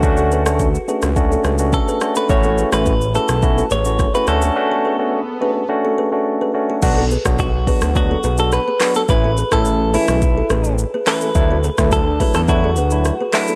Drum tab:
CC |----------------|----------------|----------------|x---------------|
HH |----------------|----------------|----------------|------o-------o-|
SH |xxxxxxxxxxxxxxxx|xxxxxxxxxxxxxxxx|----------------|x-xxx-xxx-xxx-xx|
CP |----------------|----------------|----------------|--------------x-|
SD |---r---r--r---r-|---r---r----r-r-|----------------|---r---r----r-r-|
BD |o---o---o---o---|o---o---o---o---|----------------|o--oo-o-o-------|

CC |----------------|----------------|
HH |------o-------o-|------o-------o-|
SH |x-xxx-xxx-xxx-xx|x-xxx-xxx-xxx-xx|
CP |--------------x-|--------------x-|
SD |---r---r--r---r-|---r---r----r-r-|
BD |o--o----o-------|o--oo-o-o-------|